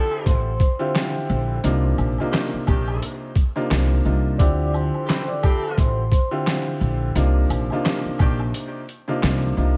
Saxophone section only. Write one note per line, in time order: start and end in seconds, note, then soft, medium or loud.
0.00 0.39 F3 loud
0.00 0.39 E4 loud
0.00 0.39 A4 loud
2.32 2.48 D#3 medium
2.32 2.48 D4 medium
2.32 2.48 G4 loud
2.69 3.15 D#3 loud
2.69 3.15 D4 loud
2.69 3.15 G4 loud
5.06 5.22 E3 medium
5.06 5.22 C4 medium
5.06 5.22 G4 medium
5.44 5.90 E3 loud
5.44 5.90 C4 loud
5.44 5.90 G4 loud
7.83 7.99 D#3 medium
7.83 7.99 D4 medium
7.83 7.99 G4 medium
8.20 8.42 D#3 loud
8.20 8.42 D4 loud
8.20 8.42 G4 loud